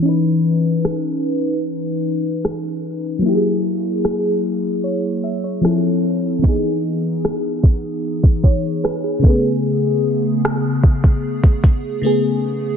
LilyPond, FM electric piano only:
\new Staff \with { instrumentName = "FM electric piano" } { \time 4/4 \key cis \minor \tempo 4 = 75 << { r1 | r2 cis''8 e''16 cis''8 r8. | r2 r8 cis''8 b'16 gis'8 r16 | r1 | } \\ { <e cis' dis' b'>1 | <fis ais e' g' gis'>2. <f c' e' a'>4 | <e b dis' gis'>2.~ <e b dis' gis'>8 <cis a b gis'>8~ | <cis a b gis'>2. <cis a b gis'>4 | } >> }